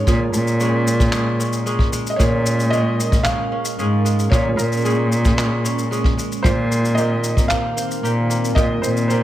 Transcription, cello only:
0.07 0.23 A#2 loud
0.34 1.85 A#2 loud
2.20 3.18 A#2 medium
3.78 4.23 G#2 medium
4.32 4.48 A#2 medium
4.58 6.09 A#2 loud
6.44 7.42 A#2 loud
8.04 8.48 A#2 medium
8.56 8.73 A#2 loud
8.83 9.23 A#2 loud

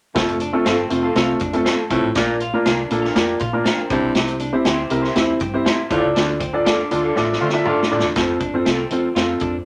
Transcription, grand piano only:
0.15 0.37 A3 medium
0.15 0.37 C4 medium
0.15 0.37 F4 medium
0.15 0.37 A4 medium
0.53 0.75 A3 medium
0.53 0.75 C4 medium
0.53 0.75 F4 medium
0.53 0.75 A4 medium
0.90 1.05 A3 medium
0.90 1.05 C4 medium
0.90 1.05 F4 medium
0.90 1.05 C5 medium
1.16 1.37 A3 medium
1.16 1.38 C4 medium
1.16 1.38 F4 medium
1.16 1.38 A4 medium
1.53 1.75 A3 medium
1.53 1.75 C4 medium
1.53 1.75 F4 medium
1.53 1.75 A4 medium
1.90 2.05 A3 medium
1.90 2.05 C4 medium
1.90 2.05 F4 medium
1.90 2.05 A4 medium
2.16 2.38 A#3 medium
2.16 2.38 D4 medium
2.16 2.38 F4 medium
2.16 2.38 A#4 medium
2.53 2.75 A#3 medium
2.53 2.75 D4 medium
2.53 2.75 F4 medium
2.53 2.76 A#4 medium
2.91 3.05 A#3 medium
2.91 3.05 D4 medium
2.91 3.06 F4 medium
2.91 3.06 A4 medium
3.15 3.37 A#3 medium
3.15 3.37 D4 medium
3.15 3.37 F4 medium
3.15 3.38 A#4 medium
3.53 3.75 A#3 medium
3.53 3.75 D4 medium
3.53 3.75 F4 medium
3.53 3.75 A#4 medium
3.90 4.41 C4 medium
3.90 4.41 E4 medium
3.90 4.41 G4 medium
3.90 4.41 C5 medium
4.53 4.75 C4 medium
4.53 4.75 E4 medium
4.53 4.75 G4 medium
4.53 4.75 C5 medium
4.90 5.05 C4 medium
4.90 5.05 E4 medium
4.90 5.05 G4 medium
4.90 5.05 A#4 medium
5.15 5.37 C4 medium
5.15 5.38 E4 medium
5.15 5.38 G4 medium
5.15 5.38 C5 medium
5.54 5.75 C4 medium
5.54 5.75 E4 medium
5.54 5.76 G4 medium
5.54 5.76 C5 medium
5.91 6.41 D4 medium
5.91 6.41 F4 medium
5.91 6.41 A4 medium
5.91 5.98 C5 medium
5.98 6.44 D5 medium
6.53 6.75 D4 medium
6.53 6.75 F4 medium
6.53 6.75 A4 medium
6.53 6.76 D5 medium
6.91 7.06 D4 medium
6.91 7.06 F4 medium
6.91 7.06 A4 medium
6.91 7.06 D5 medium
7.16 7.38 D4 medium
7.16 7.38 F4 medium
7.16 7.38 A4 medium
7.16 7.38 D5 medium
7.53 7.75 D4 medium
7.53 7.75 F4 medium
7.53 7.75 A4 medium
7.53 7.75 E5 medium
7.91 8.06 D4 medium
7.91 8.06 F4 medium
7.91 8.06 A4 medium
7.91 8.06 D5 medium
8.16 8.38 C4 medium
8.16 8.38 F4 medium
8.16 8.38 A4 medium
8.16 8.38 C5 medium
8.54 8.75 C4 medium
8.54 8.76 F4 medium
8.54 8.76 A4 medium
8.54 8.76 C5 medium
8.92 9.06 C4 medium
8.92 9.06 F4 medium
8.92 9.06 A4 medium
8.92 9.06 C5 medium
9.16 9.53 C4 medium
9.16 9.53 F4 medium
9.16 9.53 A4 medium
9.16 9.53 C5 medium

